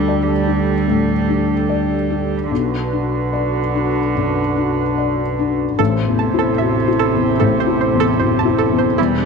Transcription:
Already playing: felt piano D2 D4, double bass D2, cello G3, analog synth pad D4 G4 A4
0.08 felt piano D5
0.47 felt piano D4
0.88 felt piano A2
1.28 felt piano D4
1.69 felt piano D5
2.10 felt piano D4
2.51 double bass B1, felt piano B1, cello D3, analog synth pad D4 F#4 B4
2.93 felt piano D4
3.33 felt piano D5
3.75 felt piano D4
4.15 felt piano F#2
4.56 felt piano D4
4.98 felt piano D5
5.39 felt piano D4
5.78 felt piano A1, double bass A1, cello C3, analog synth pad E4 A4 C5, synth pluck A4
6.07 felt piano E2
6.19 synth pluck A5
6.34 felt piano E4
6.39 synth pluck A4
6.58 felt piano F#4, synth pluck E5
6.88 felt piano E4
6.99 synth pluck A4
7.14 felt piano E2
7.40 felt piano A1, synth pluck A4
7.60 synth pluck C5
7.67 felt piano E4
7.81 synth pluck C5
7.94 felt piano E2
8.00 synth pluck A4
8.19 felt piano F#2, synth pluck C5
8.39 synth pluck A5
8.45 felt piano E4
8.58 synth pluck A4
8.72 felt piano E2
8.78 synth pluck C5
8.97 double bass E1, felt piano E2, cello G3, analog synth pad D4 G4 B4, synth pluck E4

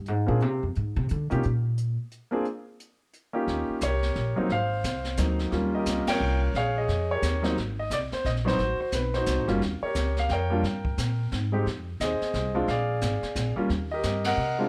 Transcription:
0.06 upright bass G#2, closed hi-hat
0.26 upright bass A#2, grand piano A#3 C4 D4 F4 G#4
0.40 upright bass C3, closed hi-hat
0.63 upright bass F2
0.75 upright bass G#2, closed hi-hat
0.96 upright bass C3
1.09 upright bass D3, closed hi-hat
1.30 upright bass C3, grand piano A#3 C#4 D#4 F4 G4, closed hi-hat
1.43 upright bass A#2, closed hi-hat
1.78 closed hi-hat
2.11 closed hi-hat
2.31 grand piano A#3 C4 D4 F4 G#4
2.45 closed hi-hat
2.80 closed hi-hat
3.13 closed hi-hat
3.33 grand piano A#3 C#4 D#4 F4 G4
3.47 upright bass D#2, brush sweep, kick, snare
3.69 muted upright bass stroke
3.81 upright bass C2, grand piano C#5, kick, snare, hi-hat pedal
3.85 grand piano G4 A#4
4.03 snare
4.16 upright bass A#1, kick, snare
4.36 grand piano F#3 A#3 C4 D#4, muted upright bass stroke
4.49 upright bass G#1, grand piano F5, brush sweep, kick, snare
4.54 grand piano C5
4.84 upright bass C2, kick, snare, hi-hat pedal
5.04 snare
5.17 upright bass D2, grand piano F#3 A#3 C4 D#4, kick, snare, hi-hat pedal
5.39 snare
5.51 upright bass D#2, grand piano G3 A#3 C#4 F4, brush sweep, kick, snare
5.75 grand piano G4 A#4 D#5
5.86 upright bass C#2, kick, snare, hi-hat pedal
6.07 grand piano A#4 C#5 G5, muted upright bass stroke, snare, ride
6.20 upright bass C2
6.54 upright bass A#1, grand piano G#4 C#5 F5, brush sweep, kick, snare
6.78 grand piano G#4 D#5
6.88 upright bass F2, kick, snare
7.11 grand piano G4 A#4 C#5
7.22 upright bass D#2, kick, snare, hi-hat pedal
7.42 grand piano F#3 A#3 C4 D#4, snare
7.56 upright bass G#1, brush sweep, kick, snare
7.79 grand piano D#5
7.90 upright bass C2, grand piano D5, kick, snare, hi-hat pedal
8.12 grand piano C5, muted upright bass stroke, snare
8.25 upright bass A#1, grand piano D#5, kick, snare
8.36 snare
8.45 grand piano F#3 B3 C4 D#4 F#4 C5, snare
8.58 upright bass A1, brush sweep, kick, snare
8.80 grand piano C5, muted upright bass stroke
8.92 upright bass B1, grand piano B4, kick, snare, hi-hat pedal
9.14 grand piano D#4 F#4 C5, snare
9.26 upright bass C2, kick, snare, hi-hat pedal
9.38 upright bass A1
9.48 upright bass F#1, grand piano G3 A#3 C#4 F4, snare
9.61 upright bass D#2, brush sweep, kick, snare
9.82 grand piano G4 A#4 C#5, muted upright bass stroke
9.95 upright bass C#2, kick, snare, hi-hat pedal
10.17 grand piano F5, snare
10.29 upright bass F2, grand piano A#4 G5, kick, snare
10.33 grand piano C#5
10.50 grand piano G3 A#3 D4 F4
10.63 upright bass G2, brush sweep, kick, snare
10.85 kick
10.98 upright bass A#2, kick, snare, hi-hat pedal
11.32 upright bass G#2, kick, snare
11.52 grand piano G#3 C4 D#4 G4
11.66 upright bass F2, brush sweep, kick, snare
12.00 upright bass D#2, grand piano G#4 C5 D#5, kick, snare, hi-hat pedal
12.21 muted upright bass stroke, snare
12.34 upright bass C2, kick, snare
12.55 grand piano G#3 C4 D4 F4
12.68 upright bass A#1, grand piano G#4 D5 F5, brush sweep, kick, snare
13.01 upright bass G#1, kick, snare, hi-hat pedal
13.22 muted upright bass stroke, snare
13.36 upright bass A#1, kick, snare, hi-hat pedal
13.56 grand piano G3 A#3 C#4 F4, muted upright bass stroke
13.69 upright bass D#2, brush sweep, kick, snare
13.91 grand piano G4 A#4 D#5
14.03 upright bass G2, kick, snare, hi-hat pedal
14.24 grand piano A#4 D#5 F#5, snare, ride
14.37 upright bass C3
14.59 grand piano G#3 C4 D4 F4

